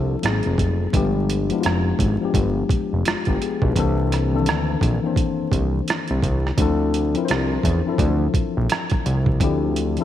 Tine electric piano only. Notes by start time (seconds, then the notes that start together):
Already playing: F3 C4 D4 E4 F4 A4 C5
0.22 F#3 A#3 B3 D#4
0.26 G#4
0.31 C4
0.92 F3 G#3 B3 D4
0.97 G4
1.50 F3 G#3 B3 D4
1.54 E4
1.61 F4
2.21 F3 G#3 B3 D4
2.25 G4
3.07 G#3 F4
3.28 B3 G4
3.42 B3 G#4
3.64 D4 B4
3.76 E3 A#3 C4 D4
3.80 A4
4.32 D#3 A#3 C4 D4
4.36 E3 A4
5.03 E3 A#3 C4 D4
5.07 C5
6.57 F3 C4 D4 E4
6.62 A4
7.14 F3 C4 D4 E4
7.18 A#4
7.25 C5
7.85 E3 C4 D4 E4
7.89 F3 A4
9.40 F3 C4 D4 E4
9.44 G4
9.97 E3 C4 D4 E4